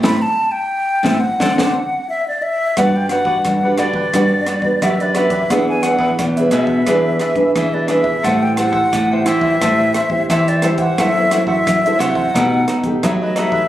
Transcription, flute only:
X:1
M:4/4
L:1/16
Q:1/4=88
K:G
V:1 name="Flute"
b a2 g4 f4- f e d e2 | f g f4 d6 e d e2 | f ^g f2 z2 e6 e d e2 | f g f4 e6 e d e f |
e3 e3 f4 z2 e ^d e2 |]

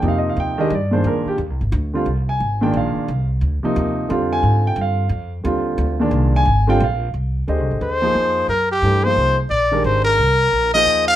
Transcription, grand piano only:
X:1
M:3/4
L:1/16
Q:"Swing" 1/4=177
K:Fdor
V:1 name="Grand piano"
(3f2 e2 f2 g2 e2 d2 c2 | B2 G2 z8 | z2 a4 g2 f4- | f2 z8 z2 |
z2 a4 g2 f4- | f2 z8 z2 | z2 a4 g2 f3 z | z12 |
z12 | z12 | z12 |]
V:2 name="Grand piano"
[C,F,B,E]6 [E,A,DG]2 z2 [B,,E,A,D]2- | [B,,E,A,D]4 z6 [D,G,CF]2 | z6 [B,,E,A,D]6 | z6 [C,F,B,E]6 |
[D,G,CF]8- [D,G,CF]2 z2 | z4 [D,G,CF]6 [B,,E,A,D]2- | [B,,E,A,D]4 z2 [D,G,CF]2 z4 | z4 [D,A,Gce]6 [F,B,EAc]2- |
[F,B,EAc]4 z4 [=E,=A,DG=B]2 [F,_B,_E_Ac]2- | [F,B,EAc]2 z4 [E,A,DGB]6 | z6 [F,B,EAc]6 |]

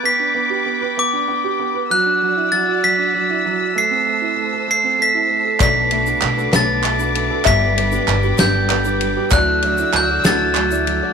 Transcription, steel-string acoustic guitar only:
X:1
M:6/8
L:1/16
Q:3/8=65
K:G
V:1 name="Steel-string acoustic guitar"
z12 | z12 | z12 | [B,,F,A,DFB]2 [A,DFB] [A,DFB]2 [A,DFB] [B,,F,A,DFB]2 [A,DFB] [A,DFB]2 [A,DFB] |
[G,,G,B,DGB]2 [B,DGB] [B,DGB]2 [B,DGB] [G,,G,B,DGB]2 [B,DGB] [B,DGB]2 [B,DGB] | [D,E,A,DFd]2 [A,DFd] [A,DFd]2 [A,DFd] [D,E,A,DFd]2 [A,DFd] [A,DFd]2 [A,DFd] |]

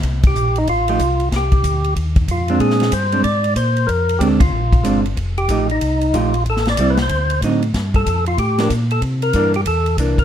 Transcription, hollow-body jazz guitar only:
X:1
M:4/4
L:1/8
Q:"Swing" 1/4=187
K:Fmix
V:1 name="Hollow-body jazz guitar"
z4 z [F,A,EG] z2 | z6 z [_A,CD]- | [_A,CD]2 z [A,CD] z4 | z2 [_A,CD] z3 [A,CD] z |
z2 [F,A,EG] z3 [F,A,EG] z | z2 [G,C=E] z3 [D,^F,C_E] z | z4 z [F,B,D] z2 | z2 [=E,B,D] z3 [E,B,D] z |]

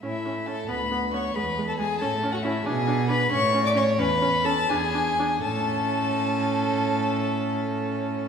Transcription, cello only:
X:1
M:6/8
L:1/8
Q:3/8=88
K:A
V:1 name="Cello" clef=bass
A,,3 D,,3 | E,,3 A,,3 | B,,3 A,,3 | E,,3 E,,3 |
A,,6- | A,,6 |]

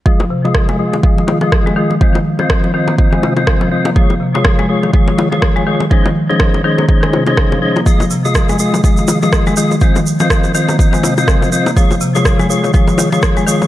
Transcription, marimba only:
X:1
M:4/4
L:1/16
Q:"Swing 16ths" 1/4=123
K:Fm
V:1 name="Marimba" clef=bass
F, z C, z F, A, z E, F, z E, F, z A, E, z | F, E, z F, F, z E, B, z A, C, z F, F, z B, | F, z C, z F, A, z E, F, z E, F, z A, E, z | F, E, z F, F, z E, B, z A, C, z F, F, z B, |
F, z C, z F, A, z E, F, z E, F, z A, E, z | F, E, z F, z2 E, B, z A, C, z F, F, z B, | F, z C, z F, A, z E, F, z E, F, z A, E, z |]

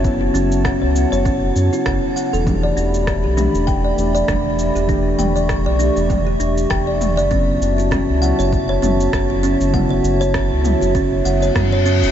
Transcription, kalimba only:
X:1
M:4/4
L:1/16
Q:"Swing 16ths" 1/4=99
K:F#phr
V:1 name="Kalimba"
z F C z f c z c C z2 E f z f A | z d D z2 G D z g d z d D z2 G | D z g d z d D z2 G D z g d z d | C z2 F C z f c z c C z2 F C z |
f c z c C z2 F C z f c z c C z |]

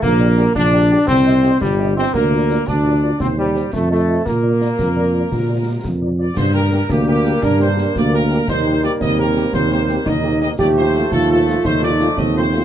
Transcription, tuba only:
X:1
M:6/8
L:1/8
Q:3/8=114
K:Bb
V:1 name="Tuba" clef=bass
B,,,3 B,,,3 | C,,3 G,,,3 | D,,3 D,,3 | E,,3 F,,3 |
B,,3 F,,3 | B,,3 F,,3 | G,,3 D,,3 | G,,3 D,,3 |
E,,3 E,,3 | E,,3 E,,3 | E,,3 E,,3 | E,,3 E,,3 |]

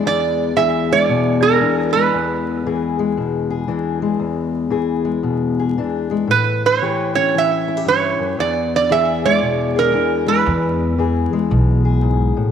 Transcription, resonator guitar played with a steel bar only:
X:1
M:4/4
L:1/8
Q:"Swing" 1/4=115
K:Emix
V:1 name="Resonator guitar played with a steel bar"
d2 e d2 ^A2 B- | B6- B z | z8 | B c2 c e2 c2 |
d d e d2 ^A2 B- | B6- B z |]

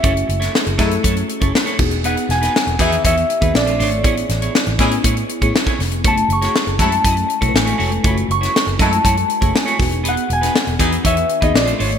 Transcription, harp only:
X:1
M:4/4
L:1/16
Q:1/4=120
K:F#dor
V:1 name="Harp"
e6 z8 z2 | f2 g4 e2 e4 =d2 c2- | c6 z8 z2 | a2 c'4 a2 a4 g2 z2 |
b2 c'4 a2 a4 g2 z2 | f2 g6 e3 d =d2 c2 |]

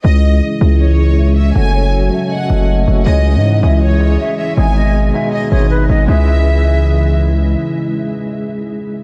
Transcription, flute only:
X:1
M:4/4
L:1/8
Q:1/4=159
K:C#m
V:1 name="Flute"
c d2 e c2 e e | f c2 e d4 | c d2 e c2 e e | g d2 e d c B d |
e6 z2 | z8 |]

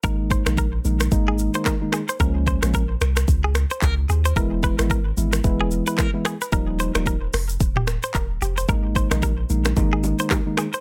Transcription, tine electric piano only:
X:1
M:4/4
L:1/16
Q:"Swing 16ths" 1/4=111
K:Dblyd
V:1 name="Tine electric piano"
[E,A,B,E]3 [E,A,B,E] z2 [E,A,B,E]2 [E,A,B,E]3 [E,A,B,E] z [E,A,B,E] z2 | [F,A,B,D]3 [F,A,B,D] z12 | [=E,^G,=B,=E]3 [E,G,B,E] z2 [E,G,B,E]2 [E,G,B,E]3 [E,G,B,E] z [E,G,B,E] z2 | [F,G,B,E]3 [F,G,B,E] z12 |
[E,A,B,E]3 [E,A,B,E] z2 [E,A,B,E]2 [E,A,B,E]3 [E,A,B,E] z [E,A,B,E] z2 |]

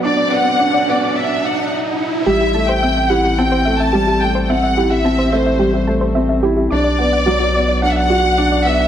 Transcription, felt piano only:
X:1
M:4/4
L:1/8
Q:1/4=108
K:Ador
V:1 name="Felt piano"
D B, D B, z4 | G, A, C E C A, G, A, | C E C A, G, A, C E | D B, F, B, D F D B, |]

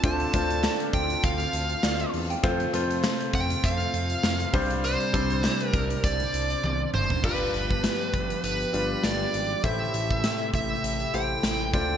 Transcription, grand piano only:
X:1
M:4/4
L:1/16
Q:"Swing 16ths" 1/4=100
K:Gdor
V:1 name="Grand piano"
[A,DFc]2 [A,DFc]4- [A,DFc] z8 z | [A,CFc]2 [A,CFc]4- [A,CFc] z6 z [G,CDc]2- | [G,CDc]2 [G,CDc]4- [G,CDc] z8 z | [G,DFB=B]4- [G,DF_B=B] z4 z [G,DFB]4 z2 |
[A,EGc]4- [A,EGc] z4 z [A,EGc]4 [A,DFc]2 |]
V:2 name="Grand piano" clef=bass
D,6 z8 z2 | z12 z2 C,2- | C,4 z12 | G,,6 z8 z2 |
A,,6 z8 D,2 |]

